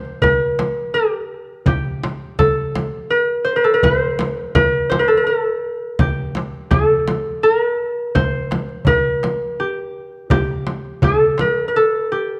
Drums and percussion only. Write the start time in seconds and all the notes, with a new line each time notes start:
0.05 darbuka ka
0.22 darbuka dum, frame drum
0.59 darbuka tek, frame drum
0.95 darbuka ka
1.66 darbuka dum, frame drum
2.04 darbuka tek, frame drum
2.22 darbuka ka
2.39 frame drum, darbuka dum
2.75 darbuka tek, frame drum
3.12 darbuka ka
3.83 darbuka dum, frame drum
4.19 darbuka tek, frame drum
4.55 frame drum, darbuka dum
4.92 darbuka tek, frame drum
5.28 darbuka ka
5.99 frame drum, darbuka dum
6.35 darbuka tek, frame drum
6.54 darbuka ka
6.71 frame drum, darbuka dum
7.08 darbuka tek, frame drum
7.43 darbuka ka
8.15 darbuka dum, frame drum
8.51 darbuka tek, frame drum
8.69 darbuka ka
8.85 darbuka dum, frame drum
9.23 darbuka tek, frame drum
9.59 darbuka ka
10.30 darbuka dum, frame drum
10.67 darbuka tek, frame drum
10.85 darbuka ka
11.02 darbuka dum, frame drum
11.38 darbuka tek, frame drum
11.75 darbuka ka